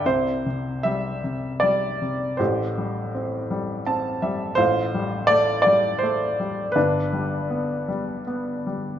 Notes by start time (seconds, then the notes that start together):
0.06 C2 C3 E4 C5
0.46 C3
0.83 G3 E5
1.24 C3
1.60 G3 D5
2.02 C3
2.37 A1 A2 G4 C5
2.78 G3
3.15 C4
3.51 G3
3.86 C4 A5
4.22 G3 E5
4.55 A1 A2 F4 C5
4.94 G3
5.27 A3 D5
5.62 D5
5.66 G3
5.99 C5
6.03 A3
6.40 G3
6.72 G1 G2 B4
6.76 D4
7.13 G3
7.50 B3
7.88 G3
8.27 B3
8.67 G3